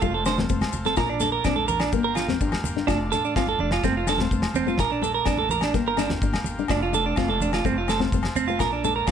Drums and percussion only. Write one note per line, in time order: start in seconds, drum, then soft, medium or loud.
0.02 kick loud
0.02 maracas medium
0.25 snare medium
0.25 low agogo medium
0.25 maracas loud
0.37 snare medium
0.37 high conga medium
0.37 low conga medium
0.37 maracas soft
0.49 kick loud
0.49 maracas medium
0.61 snare medium
0.61 high conga medium
0.61 low agogo medium
0.73 low conga medium
0.73 maracas loud
0.84 snare soft
0.84 maracas soft
0.96 kick loud
0.96 snare medium
0.96 low agogo medium
0.96 maracas medium
1.20 snare soft
1.20 high conga medium
1.20 maracas loud
1.44 kick medium
1.44 snare medium
1.44 low agogo medium
1.44 maracas medium
1.56 high conga medium
1.68 low conga medium
1.68 maracas loud
1.80 snare medium
1.80 low agogo medium
1.80 maracas soft
1.92 kick loud
1.92 maracas medium
2.15 snare medium
2.15 low agogo medium
2.15 maracas loud
2.29 snare medium
2.29 high conga medium
2.29 low conga medium
2.29 maracas soft
2.41 kick medium
2.41 maracas medium
2.52 snare medium
2.52 high conga medium
2.52 low agogo medium
2.64 high conga medium
2.64 low conga medium
2.64 maracas loud
2.77 snare soft
2.88 kick loud
2.88 snare medium
2.88 low agogo medium
2.88 maracas medium
3.12 snare soft
3.12 high conga medium
3.12 maracas loud
3.25 maracas soft
3.36 kick medium
3.36 snare medium
3.36 low agogo medium
3.36 maracas medium
3.47 high conga medium
3.59 low conga medium
3.71 snare medium
3.71 low agogo medium
3.71 maracas soft
3.83 kick medium
3.83 snare soft
3.83 maracas medium
4.07 snare medium
4.07 low agogo medium
4.07 maracas loud
4.18 snare medium
4.18 high conga medium
4.18 low conga medium
4.18 maracas soft
4.31 kick loud
4.31 maracas medium
4.42 snare medium
4.42 high conga medium
4.42 low agogo medium
4.54 low conga medium
4.54 maracas medium
4.68 maracas soft
4.78 kick loud
4.78 snare medium
4.78 low agogo medium
4.78 maracas medium
5.02 high conga medium
5.02 maracas medium
5.25 kick medium
5.25 snare medium
5.25 low agogo medium
5.25 maracas medium
5.37 high conga medium
5.49 low conga medium
5.49 maracas medium
5.61 snare medium
5.61 low agogo medium
5.61 maracas soft
5.74 kick loud
5.74 snare soft
5.74 maracas medium
5.97 snare medium
5.97 low agogo medium
5.97 maracas medium
6.10 snare medium
6.10 high conga medium
6.10 low conga medium
6.10 maracas soft
6.22 kick loud
6.22 maracas medium
6.33 snare medium
6.33 high conga medium
6.33 low agogo medium
6.44 low conga medium
6.44 maracas medium
6.58 maracas soft
6.68 kick loud
6.68 snare medium
6.68 low agogo medium
6.68 maracas medium
6.93 high conga medium
6.93 maracas medium
7.16 kick medium
7.16 snare medium
7.16 low agogo medium
7.16 maracas medium
7.28 high conga medium
7.40 low conga medium
7.40 maracas medium
7.53 snare medium
7.53 low agogo medium
7.53 maracas soft
7.65 kick medium
7.65 maracas medium
7.88 snare medium
7.88 low agogo medium
7.88 maracas medium
8.00 snare medium
8.00 high conga medium
8.00 low conga medium
8.00 maracas soft
8.12 kick loud
8.12 maracas medium
8.23 snare medium
8.23 high conga medium
8.23 low agogo medium
8.36 low conga medium
8.36 maracas medium
8.48 maracas soft
8.59 kick loud
8.59 snare medium
8.59 low agogo medium
8.59 maracas medium
8.84 high conga medium
8.84 maracas medium
9.07 kick loud
9.07 snare medium
9.07 low agogo medium
9.07 maracas medium